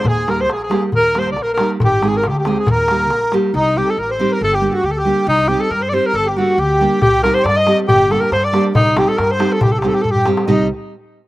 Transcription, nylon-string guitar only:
X:1
M:2/4
L:1/8
Q:1/4=138
K:none
V:1 name="Nylon-string guitar"
z [G,_B,_EG] z [G,B,EG] | z [G,_B,_EG] z [G,B,EG] | z [_A,C_E_A] z [A,CEA] | z [G,_B,_EG] z [G,B,EG] |
z [G,C_EG] z [G,CEG] | z [G,_B,DG] z [G,B,DG] | z [G,C_EG] z [G,CEG] | z [G,_B,DG] z [G,B,DG] |
z [G,C_EG] z [G,CEG] | z [G,_B,DG] z [G,B,DG] | z [G,C_EG] z [G,CEG] | z [G,C_EG] z [G,CEG] |
[G,C_EG] z3 |]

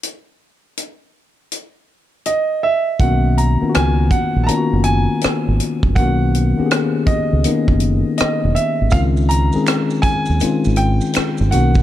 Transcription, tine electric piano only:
X:1
M:4/4
L:1/16
Q:"Swing 16ths" 1/4=81
K:B
V:1 name="Tine electric piano"
z16 | [D,A,B,CF]2 z [D,A,B,C^EF]4 z [D,A,B,CEF]6 z2 | [D,A,B,CF]2 z [D,A,B,C=G^G]4 z [D,A,B,CD]6 z2 | [D,G,^B,C^E]2 z [D,G,B,CG]4 z [D,G,B,CE]6 [D,A,=B,CF]2 |]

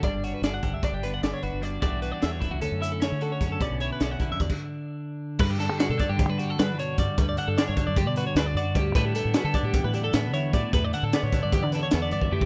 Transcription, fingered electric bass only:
X:1
M:9/8
L:1/16
Q:3/8=101
K:Glyd
V:1 name="Fingered electric bass" clef=bass
G,,, G,,,2 z G,,,2 G,,, D,,2 G,,,3 G,,, z G,,, G,,,3 | E,,, B,,,2 z E,,2 E,,, C,, D,, F,,4 D,3 F,,2 | B,,, B,,,2 z B,,,2 B,,, F,, E,, z8 z | G,,3 G, z B,, z G,,2 G,3 G,2 B,,2 G,, z |
D,,2 z G,, z G,,2 F,,2 B,,2 z D,,2 F,,2 D,,2 | A,,3 A,, z D, z A,,2 A,,3 A,,2 D,2 A,, z | E,,2 z A,, z A,,2 G,,2 D,2 z E,,2 G,,2 F,,2 |]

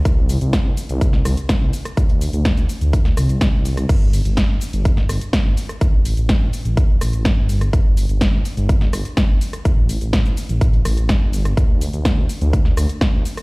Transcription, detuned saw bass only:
X:1
M:4/4
L:1/16
Q:1/4=125
K:C
V:1 name="Detuned saw bass" clef=bass
C,,3 C,,3 z C,,3 C,, z2 C,, z2 | D,,3 D,,3 z D,,3 C,,3 C,,3 | G,,,3 G,,,3 z G,,,3 G,,, z2 G,,, z2 | A,,,3 A,,,3 z A,,,3 A,,,3 G,,,3 |
G,,,3 G,,,3 z G,,,3 G,,, z2 G,,, z2 | A,,,3 A,,,3 z A,,,3 A,,,3 G,,,3 | D,,3 D,,3 z D,,3 D,, z2 D,, z2 |]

